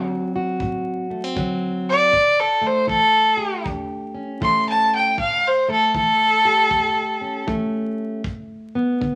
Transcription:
0.00 0.56 D3 medium
0.00 1.35 F#3 medium
0.00 1.10 C4 medium
0.00 0.34 F#4 medium
0.36 2.11 F#4 medium
0.60 1.33 A2 medium
0.60 kick medium
1.10 1.24 A3 medium
1.24 2.14 C4 soft
1.36 2.08 D3 medium
1.36 2.14 F#3 medium
1.36 kick medium
1.89 2.41 D5 loud
2.13 2.85 A2 medium
2.13 kick medium
2.39 2.68 A4 medium
2.62 4.41 A3 medium
2.66 2.89 C5 medium
2.87 3.60 E3 medium
2.87 3.64 A4 loud
2.87 kick medium
3.37 5.21 G4 medium
3.66 4.37 E2 medium
3.66 kick medium
4.14 5.16 C#4 medium
4.41 5.13 E3 medium
4.41 5.16 A3 medium
4.41 4.68 C6 medium
4.41 kick medium
4.69 4.94 A5 medium
4.95 5.19 G5 medium
5.18 5.90 A2 medium
5.18 5.49 F5 medium
5.18 kick medium
5.47 5.71 C5 medium
5.68 7.46 A3 medium
5.68 5.95 A4 medium
5.94 6.67 E3 medium
5.94 7.45 A4 loud
5.94 kick medium
6.45 8.22 G4 medium
6.71 7.43 E2 medium
6.71 kick medium
7.21 8.22 C#4 medium
7.47 8.19 E3 medium
7.47 8.22 A3 medium
7.47 kick medium
8.24 8.96 G2 medium
8.24 kick medium
8.75 9.15 B3 medium
9.01 9.15 D3 medium
9.01 kick medium

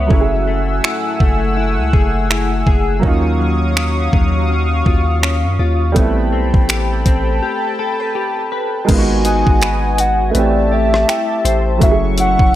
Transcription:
0.00 0.10 C#3 medium
0.00 0.10 E3 medium
0.00 0.19 B3 soft
0.00 1.21 E5 loud
0.07 0.81 F#1 loud
0.07 2.97 F#3 medium
0.07 3.39 F#3 medium
0.07 2.98 A3 medium
0.07 3.00 A3 medium
0.07 2.99 C#4 medium
0.07 3.00 F#5 medium
0.07 3.00 G#5 medium
0.07 3.00 E6 medium
0.07 kick loud
0.12 3.00 E4 medium
0.12 0.20 F#4 medium
0.21 3.04 G#4 medium
0.47 1.20 A3 medium
0.84 1.56 E4 medium
0.84 finger snap loud
1.20 1.79 F#1 loud
1.20 3.12 A3 medium
1.20 kick medium
1.57 2.29 E4 medium
1.78 1.93 C#2 loud
1.93 2.64 F#1 loud
1.93 2.66 G#4 medium
1.93 kick medium
2.30 3.12 E4 medium
2.30 finger snap loud
2.67 3.02 F#1 loud
2.67 3.12 G#4 medium
2.67 kick medium
3.00 4.09 D#2 loud
3.00 5.96 D#3 medium
3.00 5.90 F#3 medium
3.00 5.93 F#3 medium
3.00 5.91 A#3 medium
3.00 5.92 C#4 medium
3.00 5.93 F5 medium
3.00 5.93 C#6 medium
3.00 5.93 D#6 loud
3.00 kick loud
3.05 5.93 D#4 medium
3.05 5.94 F4 medium
3.39 4.12 F#3 medium
3.76 4.48 C#4 medium
3.76 finger snap loud
4.13 4.83 D#2 loud
4.13 5.95 F#3 medium
4.13 kick medium
4.49 5.21 C#4 medium
4.86 5.46 D#2 loud
4.86 5.58 F4 medium
4.86 kick medium
5.23 6.04 C#4 medium
5.23 finger snap loud
5.44 5.59 F#2 loud
5.59 5.94 D#2 loud
5.59 6.04 F4 medium
5.92 6.34 A1 loud
5.92 8.83 G3 medium
5.92 8.84 A3 medium
5.92 8.88 A3 medium
5.92 8.84 B3 medium
5.92 8.85 A4 medium
5.92 8.85 G5 medium
5.92 8.86 A5 medium
5.92 8.86 B5 medium
5.92 kick loud
5.92 closed hi-hat medium
5.98 8.85 C4 medium
5.98 8.86 E4 medium
6.32 6.53 B1 loud
6.32 7.05 C4 medium
6.54 7.04 A1 medium
6.54 kick medium
6.69 7.41 G4 medium
6.69 finger snap loud
6.69 closed hi-hat medium
7.06 7.41 A1 loud
7.06 8.97 C4 medium
7.06 kick medium
7.06 closed hi-hat medium
7.42 8.14 G4 medium
7.79 8.00 A4 medium
8.00 8.51 B4 medium
8.15 8.97 G4 medium
8.52 8.97 B4 medium
8.85 9.44 G#1 loud
8.85 10.30 G#3 medium
8.85 10.34 G#3 medium
8.85 10.32 B3 medium
8.85 10.31 A#4 medium
8.85 kick loud
8.85 closed hi-hat medium
8.85 crash medium
8.89 10.33 D#4 medium
8.89 8.98 F4 medium
8.89 10.34 F#4 medium
8.89 10.34 D#5 medium
8.89 10.34 F#5 medium
8.89 10.34 G#5 medium
8.98 10.37 F#4 medium
9.25 10.43 D#4 medium
9.25 10.61 G#5 medium
9.25 10.02 G#5 loud
9.25 closed hi-hat medium
9.47 10.32 G#1 medium
9.47 kick medium
9.62 10.43 B4 medium
9.62 finger snap loud
9.62 closed hi-hat medium
9.98 10.43 F#4 medium
9.98 10.32 F#5 loud
9.98 closed hi-hat medium
10.30 11.76 A3 medium
10.30 11.77 B4 medium
10.30 10.38 E5 medium
10.35 11.05 A1 loud
10.35 11.90 A3 medium
10.35 11.78 C4 medium
10.35 11.79 E4 medium
10.35 11.80 G4 medium
10.35 10.75 D5 loud
10.35 11.80 E5 medium
10.35 11.80 A5 medium
10.35 closed hi-hat medium
10.72 11.90 G4 medium
10.72 11.82 E5 loud
10.94 cross-stick medium
11.08 12.17 E4 medium
11.08 12.14 G5 medium
11.08 finger snap loud
11.08 closed hi-hat medium
11.45 11.80 A1 loud
11.45 11.90 C5 medium
11.45 closed hi-hat medium
11.78 12.37 F#1 loud
11.78 12.55 F#3 medium
11.78 12.55 A3 medium
11.78 12.55 C#4 medium
11.78 12.55 E5 medium
11.78 12.55 C#6 medium
11.78 kick loud
11.82 12.55 E4 medium
11.82 11.91 F#4 medium
11.82 11.97 E5 loud
11.82 closed hi-hat medium
11.91 12.55 G#4 medium
12.18 12.55 E4 medium
12.18 12.55 F#5 loud
12.18 closed hi-hat medium
12.39 12.55 F#1 medium
12.39 kick medium

